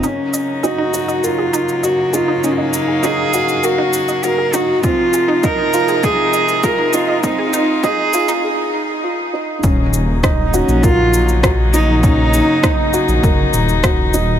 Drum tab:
SH |x-x-x-xxx-xxx-x-|x-x-x-xxx-xxx-x-|x-x-x-xxx-xxx-x-|x-x-x-xx--------|
SD |----------------|----------------|----------------|----------------|
BD |----------------|----------------|o---o---o---o---|o---o-----------|

SH |x-x-x-xxx-xxx-x-|x-x-x-xxx-xxx-x-|
SD |----r-------r---|----r-------r---|
BD |o---o---o---o---|o---o---o---o---|